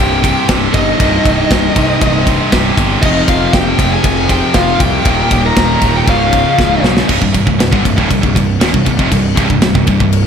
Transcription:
Already playing: distorted electric guitar C2 G2 C3, lead electric guitar G4 G5
0.00 picked electric bass C1
0.22 distorted electric guitar C2 G2 C3, kick, ride
0.48 picked electric bass C1, distorted electric guitar C2 G2 C3, kick, snare, ride
0.74 picked electric bass G1, lead electric guitar D#4 D#5, kick, ride
0.99 picked electric bass C1, distorted electric guitar C2 G2 C3, kick, ride
1.25 picked electric bass C1, kick, ride
1.51 picked electric bass C1, kick, snare, ride
1.74 picked electric bass C2, distorted electric guitar C2 G2 C3, kick, ride
2.02 picked electric bass C1, kick, ride
2.26 distorted electric guitar C2 G2 C3, kick, ride
2.50 picked electric bass C1, distorted electric guitar C2 G2 C3, kick, snare, ride
2.77 picked electric bass G1, kick, ride
3.01 picked electric bass F1, distorted electric guitar F2 C3 F3, lead electric guitar D#4 D#5, kick, crash
3.28 picked electric bass F1, lead electric guitar F4 F5, kick, ride
3.53 picked electric bass F1, lead electric guitar G4 G5, kick, snare, ride
3.77 picked electric bass F1, distorted electric guitar C3 F3, kick, ride
3.81 distorted electric guitar F2
3.92 lead electric guitar G#4 G#5
4.04 picked electric bass F1, lead electric guitar G#4 G#5, kick, ride
4.28 distorted electric guitar F2 C3 F3, lead electric guitar G4 G5, kick, ride
4.53 picked electric bass F1, distorted electric guitar F2 C3 F3, lead electric guitar F4 F5, kick, snare, ride
4.80 picked electric bass C2, lead electric guitar G4 G5, kick, ride
5.04 picked electric bass D#1, distorted electric guitar D#2 A#2 D#3, kick, ride
5.31 picked electric bass D#1, kick, ride
5.45 lead electric guitar A#4 A#5
5.57 picked electric bass D#1, kick, snare, ride
5.81 picked electric bass D#1, distorted electric guitar D#2 A#2 D#3, kick, ride
5.96 lead electric guitar G4 G5
6.07 picked electric bass C#1, distorted electric guitar C#2 G#2 C#3, lead electric guitar F4 F5, kick, ride
6.33 kick, ride
6.59 picked electric bass C#1, kick, snare
6.82 picked electric bass B1, distorted electric guitar C#2 G#2 C#3, snare
6.97 snare
7.08 picked electric bass C1, distorted electric guitar C2 G2, kick, crash
7.22 picked electric bass C1, distorted electric guitar C2 G2, kick
7.33 picked electric bass C1, distorted electric guitar C2 G2, kick, ride
7.46 picked electric bass C1, distorted electric guitar C2 G2, kick
7.59 picked electric bass C1, distorted electric guitar C2 G2, snare, ride
7.71 picked electric bass G1, distorted electric guitar G2 D3, kick
7.84 picked electric bass C1, distorted electric guitar C2 G2, kick, ride
7.96 picked electric bass D1, distorted electric guitar D2 A2, kick
8.09 picked electric bass C1, distorted electric guitar C2 G2, kick, ride
8.22 picked electric bass C1, distorted electric guitar C2 G2, kick
8.35 picked electric bass C1, distorted electric guitar C2 G2, kick, ride
8.60 picked electric bass D#1, distorted electric guitar D#2 A#2, snare, ride
8.72 picked electric bass C1, distorted electric guitar C2 G2, kick
8.85 picked electric bass C1, distorted electric guitar C2 G2, kick, ride
8.99 picked electric bass F1, distorted electric guitar F2 C3, kick
9.11 picked electric bass C1, distorted electric guitar C2 G2, kick, ride
9.36 picked electric bass C1, distorted electric guitar C2 G2, kick, ride
9.48 picked electric bass C1, distorted electric guitar C2 G2, kick
9.62 picked electric bass C1, distorted electric guitar C2 G2, snare, ride
9.75 picked electric bass C1, distorted electric guitar C2 G2, kick
9.87 picked electric bass C1, distorted electric guitar C2 G2, kick, ride
10.00 picked electric bass C1, distorted electric guitar C2 G2, kick
10.13 ride

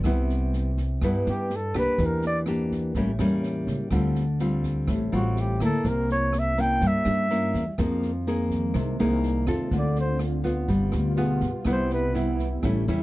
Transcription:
0.04 upright bass C2, nylon-string guitar C3 G3 B3 E4, kick, cross-stick, snare
0.29 snare
0.53 snare
0.77 kick, snare
1.01 upright bass G2, nylon-string guitar G2 G3 B3 E4, kick, cross-stick, snare
1.26 upright bass G2, flugelhorn G4, snare
1.50 snare
1.56 flugelhorn A4
1.74 upright bass C2, nylon-string guitar A#3 D4 G4, kick, cross-stick, snare
1.78 flugelhorn B4
1.98 upright bass E2, nylon-string guitar E3, kick, snare
2.06 flugelhorn A#4
2.22 snare
2.27 flugelhorn D5
2.46 nylon-string guitar A#3 D4 G4, cross-stick, snare
2.71 kick, snare
2.94 upright bass A1, nylon-string guitar A2 G3 A#3 C#4, kick, snare
3.19 upright bass E2, nylon-string guitar G3 A#3 C#4, cross-stick, snare
3.43 snare
3.67 upright bass C#2, kick, snare
3.91 upright bass D2, nylon-string guitar D3 G3 C4 F4, kick, cross-stick, snare
4.15 snare
4.39 nylon-string guitar G3 C4 F4, snare
4.63 kick, snare
4.87 upright bass A1, nylon-string guitar A2, kick, cross-stick, snare
5.12 upright bass A1, nylon-string guitar G3 C4 F4, flugelhorn F#4, snare
5.36 snare
5.40 flugelhorn G4
5.60 upright bass D2, nylon-string guitar A#3 E4, kick, cross-stick, snare
5.64 flugelhorn A4
5.84 upright bass C2, nylon-string guitar C3, kick, snare
5.88 flugelhorn A#4
6.09 flugelhorn C#5, snare
6.33 cross-stick, snare
6.39 flugelhorn E5
6.57 nylon-string guitar A#3 C#4 E4, flugelhorn G5, kick, snare
6.81 upright bass G2, nylon-string guitar G3, kick, snare
6.87 flugelhorn E5
7.05 upright bass G2, cross-stick, snare
7.30 nylon-string guitar A#3 C#4 E4, snare
7.54 upright bass E2, kick, snare
7.78 upright bass F2, analog synth pad D#3 G#3 A#3, nylon-string guitar F3 A#3 D#4 G#4, kick, cross-stick, snare
8.02 snare
8.27 nylon-string guitar A#3 D#4 G#4, snare
8.50 kick, snare
8.74 upright bass C2, nylon-string guitar C3, kick, cross-stick, snare
8.99 upright bass C2, nylon-string guitar A#3 D#4 G#4, snare
9.23 snare
9.47 upright bass F2, nylon-string guitar C4 F4 A4, kick, cross-stick, snare
9.71 upright bass D2, nylon-string guitar D3, analog synth pad D3 C4 F4, kick, snare
9.78 flugelhorn D5
9.96 snare
10.00 flugelhorn C5
10.19 cross-stick, snare
10.44 nylon-string guitar B3 F4, kick, snare
10.68 upright bass G1, analog synth pad B2 F4, nylon-string guitar G3, kick, snare
10.92 upright bass D2, cross-stick, snare
11.16 nylon-string guitar B3 F4 G#4, snare
11.40 upright bass G2, kick, snare
11.65 upright bass C2, nylon-string guitar C3 G3 B3 E4, analog synth pad C3 B3 E4, kick, cross-stick, snare
11.71 flugelhorn C5
11.90 flugelhorn B4, snare
12.14 nylon-string guitar G3 B3 E4, snare
12.39 kick, snare
12.63 upright bass A1, nylon-string guitar A2 G3 C#4 E4, analog synth pad C#3 A3 G4, kick, cross-stick, snare
12.87 upright bass E2, nylon-string guitar G3 C#4 E4, snare

